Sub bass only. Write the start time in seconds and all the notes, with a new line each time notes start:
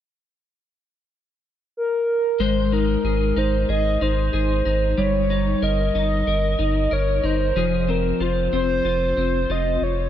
2.39 G#1
3.04 G#1
3.36 G#1
3.69 G#1
4.01 G#1
4.33 G#1
4.66 G#1
4.98 G1
5.62 G1
5.95 G1
6.27 G1
6.59 G1
6.92 G1
7.23 G1
7.56 F1
8.20 F1
8.52 F1
8.84 F1
9.17 F1
9.49 F1
9.81 F1